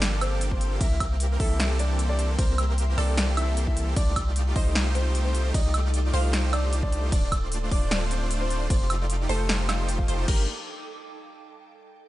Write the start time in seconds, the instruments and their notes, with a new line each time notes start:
Already playing: 808-style bass G1, supersaw synth F3 A#3 D4 G4 A4, ambient pad A#3 F5 G5 D6, synth pluck A4
0.02 snare, closed hi-hat, crash
0.21 grand piano C4 C5, closed hi-hat, high woodblock
0.41 closed hi-hat
0.51 grand piano C4 C5, kick
0.61 closed hi-hat
0.81 808-style bass C2, supersaw synth E3 A#3 C4 G4 A#4, grand piano E4 E5, synth pluck A#4, ambient pad E5 G5 C6, kick, closed hi-hat, crash
1.00 kick, closed hi-hat, high woodblock
1.20 closed hi-hat
1.40 808-style bass C2, supersaw synth E3 A#3 C4 G4 A4, grand piano E4 E5, synth pluck A4, kick, open hi-hat
1.60 snare, closed hi-hat, crash
1.79 grand piano D4 D5, closed hi-hat
1.99 closed hi-hat
2.09 grand piano D4 D5
2.19 closed hi-hat
2.38 808-style bass C2, supersaw synth E3 A#3 C4 G4 A#4, grand piano C4 C5, synth pluck A#4, kick, closed hi-hat, crash
2.58 closed hi-hat, high woodblock
2.78 closed hi-hat
2.98 808-style bass C2, supersaw synth E3 A#3 C4 G4 A4, grand piano D4 D5, synth pluck A4, open hi-hat
3.18 snare, closed hi-hat, crash
3.37 grand piano E4 E5, closed hi-hat, high woodblock
3.57 closed hi-hat
3.67 grand piano E4 E5, kick
3.77 closed hi-hat
3.96 808-style bass C2, supersaw synth A3 D#4 F4 G4 D5, grand piano D4 D5, ambient pad D#4 A4 D6, synth pluck D5, kick, closed hi-hat, crash
4.16 kick, closed hi-hat, high woodblock
4.36 closed hi-hat
4.56 808-style bass C2, supersaw synth A3 D#4 F4 G4 C5, grand piano D#4 D#5, synth pluck C5, kick, open hi-hat
4.75 snare, closed hi-hat, crash
4.95 grand piano C4 C5, closed hi-hat
5.15 closed hi-hat
5.25 grand piano C4 C5
5.35 closed hi-hat
5.54 808-style bass C2, supersaw synth A3 D#4 F4 G4, grand piano D#4 D#5, synth pluck D5, kick, closed hi-hat, crash
5.74 closed hi-hat, high woodblock
5.94 closed hi-hat
6.14 808-style bass C2, supersaw synth A3 D#4 F4 G4 C5, grand piano F4 F5, synth pluck C5, open hi-hat
6.33 snare, closed hi-hat, crash
6.53 grand piano D4 D5, closed hi-hat, high woodblock
6.73 closed hi-hat
6.83 grand piano D4 D5, kick
6.92 closed hi-hat
7.12 808-style bass D1, supersaw synth A3 D4 F4 C5 D5, grand piano D4 D5, ambient pad D5 F5 C6, synth pluck D5, kick, closed hi-hat, crash
7.32 kick, closed hi-hat, high woodblock
7.52 closed hi-hat
7.71 808-style bass D1, grand piano D4 D5, synth pluck D5, kick, open hi-hat
7.91 snare, closed hi-hat, crash
8.11 grand piano C4 C5, closed hi-hat
8.31 closed hi-hat
8.41 grand piano C4 C5
8.50 closed hi-hat
8.70 808-style bass F1, supersaw synth A3 D#4 F4 G4 D5, grand piano C4 C5, ambient pad D#4 A4 G5 D6, synth pluck D5, kick, closed hi-hat, crash
8.90 closed hi-hat, high woodblock
9.10 closed hi-hat
9.29 808-style bass F1, supersaw synth A3 D#4 F4 G4 C5, grand piano A3 A4, synth pluck C5, open hi-hat
9.49 snare, closed hi-hat, crash
9.69 grand piano F3 F4, snare, closed hi-hat, high woodblock
9.89 closed hi-hat
9.99 grand piano F3 F4, kick
10.08 808-style bass F1, supersaw synth A3 D#4 F4 G4 C5, synth pluck C5, closed hi-hat
10.28 supersaw synth F3 A#3 D4 G4 A#4, grand piano G4, synth pluck A#4, kick, crash